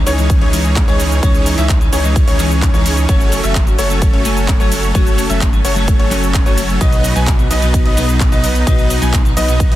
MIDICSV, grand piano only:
0, 0, Header, 1, 2, 480
1, 0, Start_track
1, 0, Tempo, 465116
1, 1267, Time_signature, 4, 2, 24, 8
1, 10068, End_track
2, 0, Start_track
2, 0, Title_t, "Grand piano"
2, 0, Program_c, 0, 0
2, 68, Note_on_c, 0, 73, 97
2, 399, Note_off_c, 0, 73, 0
2, 428, Note_on_c, 0, 73, 83
2, 879, Note_off_c, 0, 73, 0
2, 908, Note_on_c, 0, 73, 98
2, 1239, Note_off_c, 0, 73, 0
2, 1267, Note_on_c, 0, 73, 101
2, 1598, Note_off_c, 0, 73, 0
2, 1627, Note_on_c, 0, 76, 84
2, 1780, Note_off_c, 0, 76, 0
2, 1987, Note_on_c, 0, 73, 95
2, 2318, Note_off_c, 0, 73, 0
2, 2348, Note_on_c, 0, 73, 88
2, 2799, Note_off_c, 0, 73, 0
2, 2827, Note_on_c, 0, 73, 90
2, 3158, Note_off_c, 0, 73, 0
2, 3187, Note_on_c, 0, 73, 101
2, 3518, Note_off_c, 0, 73, 0
2, 3547, Note_on_c, 0, 76, 85
2, 3700, Note_off_c, 0, 76, 0
2, 3907, Note_on_c, 0, 73, 96
2, 4238, Note_off_c, 0, 73, 0
2, 4267, Note_on_c, 0, 73, 82
2, 4718, Note_off_c, 0, 73, 0
2, 4747, Note_on_c, 0, 73, 99
2, 5078, Note_off_c, 0, 73, 0
2, 5107, Note_on_c, 0, 73, 102
2, 5438, Note_off_c, 0, 73, 0
2, 5467, Note_on_c, 0, 76, 88
2, 5620, Note_off_c, 0, 76, 0
2, 5828, Note_on_c, 0, 73, 90
2, 6159, Note_off_c, 0, 73, 0
2, 6186, Note_on_c, 0, 73, 87
2, 6638, Note_off_c, 0, 73, 0
2, 6667, Note_on_c, 0, 73, 97
2, 6998, Note_off_c, 0, 73, 0
2, 7027, Note_on_c, 0, 75, 108
2, 7358, Note_off_c, 0, 75, 0
2, 7387, Note_on_c, 0, 80, 85
2, 7540, Note_off_c, 0, 80, 0
2, 7747, Note_on_c, 0, 75, 93
2, 8078, Note_off_c, 0, 75, 0
2, 8107, Note_on_c, 0, 75, 84
2, 8558, Note_off_c, 0, 75, 0
2, 8587, Note_on_c, 0, 75, 91
2, 8918, Note_off_c, 0, 75, 0
2, 8947, Note_on_c, 0, 75, 103
2, 9278, Note_off_c, 0, 75, 0
2, 9307, Note_on_c, 0, 80, 80
2, 9460, Note_off_c, 0, 80, 0
2, 9667, Note_on_c, 0, 75, 98
2, 9999, Note_off_c, 0, 75, 0
2, 10027, Note_on_c, 0, 75, 85
2, 10068, Note_off_c, 0, 75, 0
2, 10068, End_track
0, 0, End_of_file